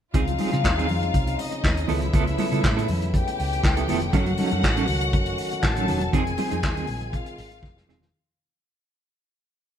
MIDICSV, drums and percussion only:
0, 0, Header, 1, 2, 480
1, 0, Start_track
1, 0, Tempo, 499168
1, 134, Time_signature, 4, 2, 24, 8
1, 9404, End_track
2, 0, Start_track
2, 0, Title_t, "Drums"
2, 132, Note_on_c, 9, 62, 38
2, 136, Note_on_c, 9, 42, 59
2, 137, Note_on_c, 9, 36, 118
2, 228, Note_off_c, 9, 62, 0
2, 233, Note_off_c, 9, 42, 0
2, 234, Note_off_c, 9, 36, 0
2, 263, Note_on_c, 9, 42, 41
2, 359, Note_off_c, 9, 42, 0
2, 368, Note_on_c, 9, 46, 64
2, 385, Note_on_c, 9, 62, 40
2, 385, Note_on_c, 9, 63, 84
2, 464, Note_off_c, 9, 46, 0
2, 481, Note_off_c, 9, 62, 0
2, 481, Note_off_c, 9, 63, 0
2, 504, Note_on_c, 9, 63, 64
2, 509, Note_on_c, 9, 42, 44
2, 600, Note_off_c, 9, 63, 0
2, 605, Note_off_c, 9, 42, 0
2, 619, Note_on_c, 9, 36, 89
2, 621, Note_on_c, 9, 62, 32
2, 629, Note_on_c, 9, 38, 102
2, 630, Note_on_c, 9, 39, 94
2, 715, Note_off_c, 9, 36, 0
2, 718, Note_off_c, 9, 62, 0
2, 725, Note_off_c, 9, 38, 0
2, 726, Note_off_c, 9, 39, 0
2, 743, Note_on_c, 9, 63, 47
2, 758, Note_on_c, 9, 42, 44
2, 839, Note_off_c, 9, 63, 0
2, 850, Note_on_c, 9, 46, 54
2, 855, Note_off_c, 9, 42, 0
2, 860, Note_on_c, 9, 62, 30
2, 860, Note_on_c, 9, 63, 64
2, 860, Note_on_c, 9, 64, 65
2, 946, Note_off_c, 9, 46, 0
2, 956, Note_off_c, 9, 62, 0
2, 956, Note_off_c, 9, 63, 0
2, 956, Note_off_c, 9, 64, 0
2, 987, Note_on_c, 9, 42, 42
2, 1083, Note_off_c, 9, 42, 0
2, 1096, Note_on_c, 9, 42, 53
2, 1097, Note_on_c, 9, 36, 89
2, 1103, Note_on_c, 9, 62, 33
2, 1192, Note_off_c, 9, 42, 0
2, 1193, Note_off_c, 9, 36, 0
2, 1199, Note_off_c, 9, 62, 0
2, 1222, Note_on_c, 9, 42, 45
2, 1318, Note_off_c, 9, 42, 0
2, 1332, Note_on_c, 9, 62, 34
2, 1335, Note_on_c, 9, 46, 67
2, 1429, Note_off_c, 9, 62, 0
2, 1431, Note_off_c, 9, 46, 0
2, 1462, Note_on_c, 9, 42, 45
2, 1558, Note_off_c, 9, 42, 0
2, 1574, Note_on_c, 9, 62, 32
2, 1575, Note_on_c, 9, 36, 103
2, 1586, Note_on_c, 9, 38, 102
2, 1587, Note_on_c, 9, 39, 73
2, 1670, Note_off_c, 9, 62, 0
2, 1671, Note_off_c, 9, 36, 0
2, 1682, Note_off_c, 9, 38, 0
2, 1683, Note_off_c, 9, 39, 0
2, 1703, Note_on_c, 9, 42, 47
2, 1799, Note_off_c, 9, 42, 0
2, 1805, Note_on_c, 9, 62, 36
2, 1805, Note_on_c, 9, 64, 75
2, 1813, Note_on_c, 9, 46, 66
2, 1902, Note_off_c, 9, 62, 0
2, 1902, Note_off_c, 9, 64, 0
2, 1909, Note_off_c, 9, 46, 0
2, 1940, Note_on_c, 9, 42, 43
2, 2037, Note_off_c, 9, 42, 0
2, 2047, Note_on_c, 9, 62, 36
2, 2053, Note_on_c, 9, 36, 126
2, 2055, Note_on_c, 9, 42, 61
2, 2143, Note_off_c, 9, 62, 0
2, 2149, Note_off_c, 9, 36, 0
2, 2151, Note_off_c, 9, 42, 0
2, 2184, Note_on_c, 9, 42, 39
2, 2280, Note_off_c, 9, 42, 0
2, 2289, Note_on_c, 9, 46, 59
2, 2298, Note_on_c, 9, 62, 41
2, 2298, Note_on_c, 9, 63, 89
2, 2386, Note_off_c, 9, 46, 0
2, 2394, Note_off_c, 9, 62, 0
2, 2394, Note_off_c, 9, 63, 0
2, 2426, Note_on_c, 9, 42, 41
2, 2431, Note_on_c, 9, 63, 57
2, 2522, Note_off_c, 9, 42, 0
2, 2527, Note_off_c, 9, 63, 0
2, 2535, Note_on_c, 9, 36, 107
2, 2536, Note_on_c, 9, 62, 30
2, 2543, Note_on_c, 9, 38, 114
2, 2544, Note_on_c, 9, 39, 94
2, 2632, Note_off_c, 9, 36, 0
2, 2632, Note_off_c, 9, 62, 0
2, 2639, Note_off_c, 9, 38, 0
2, 2641, Note_off_c, 9, 39, 0
2, 2663, Note_on_c, 9, 63, 53
2, 2678, Note_on_c, 9, 42, 47
2, 2759, Note_off_c, 9, 63, 0
2, 2770, Note_on_c, 9, 46, 54
2, 2774, Note_off_c, 9, 42, 0
2, 2780, Note_on_c, 9, 62, 29
2, 2780, Note_on_c, 9, 63, 66
2, 2780, Note_on_c, 9, 64, 66
2, 2866, Note_off_c, 9, 46, 0
2, 2876, Note_off_c, 9, 62, 0
2, 2876, Note_off_c, 9, 63, 0
2, 2876, Note_off_c, 9, 64, 0
2, 2903, Note_on_c, 9, 42, 46
2, 2999, Note_off_c, 9, 42, 0
2, 3015, Note_on_c, 9, 62, 32
2, 3017, Note_on_c, 9, 36, 102
2, 3023, Note_on_c, 9, 42, 54
2, 3111, Note_off_c, 9, 62, 0
2, 3113, Note_off_c, 9, 36, 0
2, 3119, Note_off_c, 9, 42, 0
2, 3148, Note_on_c, 9, 42, 46
2, 3244, Note_off_c, 9, 42, 0
2, 3252, Note_on_c, 9, 62, 39
2, 3263, Note_on_c, 9, 46, 66
2, 3348, Note_off_c, 9, 62, 0
2, 3360, Note_off_c, 9, 46, 0
2, 3391, Note_on_c, 9, 42, 45
2, 3487, Note_off_c, 9, 42, 0
2, 3494, Note_on_c, 9, 62, 30
2, 3496, Note_on_c, 9, 36, 122
2, 3508, Note_on_c, 9, 38, 96
2, 3509, Note_on_c, 9, 39, 85
2, 3590, Note_off_c, 9, 62, 0
2, 3592, Note_off_c, 9, 36, 0
2, 3604, Note_off_c, 9, 38, 0
2, 3606, Note_off_c, 9, 39, 0
2, 3622, Note_on_c, 9, 42, 50
2, 3718, Note_off_c, 9, 42, 0
2, 3731, Note_on_c, 9, 62, 37
2, 3731, Note_on_c, 9, 64, 78
2, 3737, Note_on_c, 9, 46, 68
2, 3828, Note_off_c, 9, 62, 0
2, 3828, Note_off_c, 9, 64, 0
2, 3834, Note_off_c, 9, 46, 0
2, 3860, Note_on_c, 9, 42, 42
2, 3956, Note_off_c, 9, 42, 0
2, 3968, Note_on_c, 9, 62, 33
2, 3974, Note_on_c, 9, 36, 111
2, 3974, Note_on_c, 9, 42, 62
2, 4064, Note_off_c, 9, 62, 0
2, 4071, Note_off_c, 9, 36, 0
2, 4071, Note_off_c, 9, 42, 0
2, 4097, Note_on_c, 9, 42, 38
2, 4193, Note_off_c, 9, 42, 0
2, 4205, Note_on_c, 9, 46, 59
2, 4215, Note_on_c, 9, 62, 43
2, 4215, Note_on_c, 9, 63, 91
2, 4301, Note_off_c, 9, 46, 0
2, 4311, Note_off_c, 9, 62, 0
2, 4311, Note_off_c, 9, 63, 0
2, 4339, Note_on_c, 9, 42, 42
2, 4345, Note_on_c, 9, 63, 63
2, 4435, Note_off_c, 9, 42, 0
2, 4441, Note_off_c, 9, 63, 0
2, 4457, Note_on_c, 9, 36, 97
2, 4467, Note_on_c, 9, 38, 114
2, 4468, Note_on_c, 9, 39, 99
2, 4553, Note_off_c, 9, 36, 0
2, 4564, Note_off_c, 9, 38, 0
2, 4565, Note_off_c, 9, 39, 0
2, 4585, Note_on_c, 9, 63, 53
2, 4586, Note_on_c, 9, 42, 47
2, 4682, Note_off_c, 9, 42, 0
2, 4682, Note_off_c, 9, 63, 0
2, 4686, Note_on_c, 9, 46, 60
2, 4707, Note_on_c, 9, 63, 65
2, 4707, Note_on_c, 9, 64, 63
2, 4782, Note_off_c, 9, 46, 0
2, 4803, Note_off_c, 9, 63, 0
2, 4803, Note_off_c, 9, 64, 0
2, 4816, Note_on_c, 9, 42, 46
2, 4912, Note_off_c, 9, 42, 0
2, 4932, Note_on_c, 9, 42, 48
2, 4936, Note_on_c, 9, 36, 106
2, 4949, Note_on_c, 9, 62, 35
2, 5028, Note_off_c, 9, 42, 0
2, 5032, Note_off_c, 9, 36, 0
2, 5045, Note_off_c, 9, 62, 0
2, 5055, Note_on_c, 9, 42, 43
2, 5151, Note_off_c, 9, 42, 0
2, 5168, Note_on_c, 9, 62, 38
2, 5173, Note_on_c, 9, 46, 65
2, 5264, Note_off_c, 9, 62, 0
2, 5269, Note_off_c, 9, 46, 0
2, 5301, Note_on_c, 9, 42, 44
2, 5397, Note_off_c, 9, 42, 0
2, 5414, Note_on_c, 9, 36, 110
2, 5416, Note_on_c, 9, 38, 99
2, 5417, Note_on_c, 9, 39, 81
2, 5423, Note_on_c, 9, 62, 33
2, 5510, Note_off_c, 9, 36, 0
2, 5512, Note_off_c, 9, 38, 0
2, 5513, Note_off_c, 9, 39, 0
2, 5519, Note_off_c, 9, 62, 0
2, 5541, Note_on_c, 9, 42, 48
2, 5638, Note_off_c, 9, 42, 0
2, 5652, Note_on_c, 9, 46, 65
2, 5658, Note_on_c, 9, 64, 84
2, 5748, Note_off_c, 9, 46, 0
2, 5754, Note_off_c, 9, 64, 0
2, 5780, Note_on_c, 9, 42, 40
2, 5877, Note_off_c, 9, 42, 0
2, 5898, Note_on_c, 9, 36, 108
2, 5898, Note_on_c, 9, 62, 33
2, 5900, Note_on_c, 9, 42, 57
2, 5994, Note_off_c, 9, 36, 0
2, 5994, Note_off_c, 9, 62, 0
2, 5996, Note_off_c, 9, 42, 0
2, 6026, Note_on_c, 9, 42, 42
2, 6122, Note_off_c, 9, 42, 0
2, 6130, Note_on_c, 9, 46, 66
2, 6136, Note_on_c, 9, 63, 97
2, 6226, Note_off_c, 9, 46, 0
2, 6232, Note_off_c, 9, 63, 0
2, 6259, Note_on_c, 9, 42, 44
2, 6274, Note_on_c, 9, 63, 67
2, 6356, Note_off_c, 9, 42, 0
2, 6370, Note_off_c, 9, 63, 0
2, 6376, Note_on_c, 9, 36, 105
2, 6382, Note_on_c, 9, 62, 30
2, 6383, Note_on_c, 9, 38, 107
2, 6384, Note_on_c, 9, 39, 98
2, 6472, Note_off_c, 9, 36, 0
2, 6478, Note_off_c, 9, 62, 0
2, 6479, Note_off_c, 9, 38, 0
2, 6480, Note_off_c, 9, 39, 0
2, 6508, Note_on_c, 9, 42, 44
2, 6511, Note_on_c, 9, 63, 51
2, 6604, Note_off_c, 9, 42, 0
2, 6606, Note_on_c, 9, 46, 58
2, 6607, Note_off_c, 9, 63, 0
2, 6623, Note_on_c, 9, 62, 29
2, 6623, Note_on_c, 9, 63, 59
2, 6623, Note_on_c, 9, 64, 62
2, 6702, Note_off_c, 9, 46, 0
2, 6719, Note_off_c, 9, 62, 0
2, 6719, Note_off_c, 9, 63, 0
2, 6719, Note_off_c, 9, 64, 0
2, 6742, Note_on_c, 9, 42, 47
2, 6838, Note_off_c, 9, 42, 0
2, 6858, Note_on_c, 9, 36, 104
2, 6860, Note_on_c, 9, 42, 53
2, 6954, Note_off_c, 9, 36, 0
2, 6957, Note_off_c, 9, 42, 0
2, 6981, Note_on_c, 9, 42, 44
2, 7077, Note_off_c, 9, 42, 0
2, 7093, Note_on_c, 9, 62, 35
2, 7097, Note_on_c, 9, 46, 73
2, 7189, Note_off_c, 9, 62, 0
2, 7193, Note_off_c, 9, 46, 0
2, 7226, Note_on_c, 9, 42, 45
2, 7323, Note_off_c, 9, 42, 0
2, 7334, Note_on_c, 9, 36, 104
2, 7338, Note_on_c, 9, 62, 28
2, 7346, Note_on_c, 9, 38, 52
2, 7430, Note_off_c, 9, 36, 0
2, 7434, Note_off_c, 9, 62, 0
2, 7442, Note_off_c, 9, 38, 0
2, 7471, Note_on_c, 9, 38, 62
2, 7567, Note_off_c, 9, 38, 0
2, 7571, Note_on_c, 9, 62, 34
2, 7571, Note_on_c, 9, 64, 76
2, 7587, Note_on_c, 9, 38, 78
2, 7667, Note_off_c, 9, 62, 0
2, 7667, Note_off_c, 9, 64, 0
2, 7684, Note_off_c, 9, 38, 0
2, 7694, Note_on_c, 9, 64, 72
2, 7712, Note_on_c, 9, 38, 77
2, 7790, Note_off_c, 9, 64, 0
2, 7808, Note_off_c, 9, 38, 0
2, 9404, End_track
0, 0, End_of_file